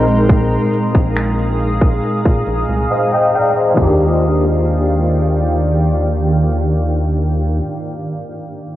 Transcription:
Already playing: A#1 A#2 G#3 C4 D#4 G#4 A#4 F5 A#5 D#6
0.08 closed hi-hat
0.29 kick, closed hi-hat
0.73 closed hi-hat
0.95 A#1, kick, closed hi-hat
1.16 finger snap, closed hi-hat
1.39 closed hi-hat
1.60 A#5, closed hi-hat
1.81 kick, closed hi-hat
2.04 closed hi-hat
2.25 A#2, kick, closed hi-hat
2.46 A#1, closed hi-hat
2.69 C2
2.91 C5 D#5 F5
3.12 D#5 G5
3.34 D5 F5 G5
3.56 C5 D#5
3.74 D#2 D#3 A#3 D4 D5 F5 G5, kick, floor tom, crash
3.80 F4 G4

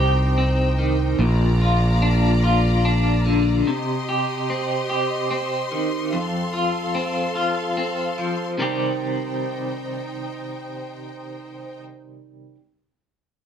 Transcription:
Already playing: C2 C3 C4 D#4 G4 C5 G5
0.38 C4
0.79 D#3
1.19 A#1 A#2 F4 D5 A#5
1.61 F4
2.02 D4
2.44 F4
2.85 D4
3.26 D3
3.64 C3 G4 D#5 C6
4.09 G4
4.50 C4
4.90 G4
5.31 C4
5.72 D#3
6.12 F2 A4 F5
6.53 F4
6.95 C4
7.35 F4
7.77 C4
8.18 F3
8.58 C3 D#3 G3 C4 D#4 C5 G5
8.62 G4

